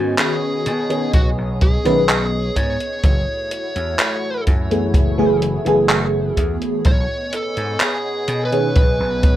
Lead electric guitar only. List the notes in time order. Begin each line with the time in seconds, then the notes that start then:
0.20 G#4
1.14 F#4
1.62 G#4
2.56 C#5
6.86 C#5
7.34 A4
7.82 G#4
8.45 B4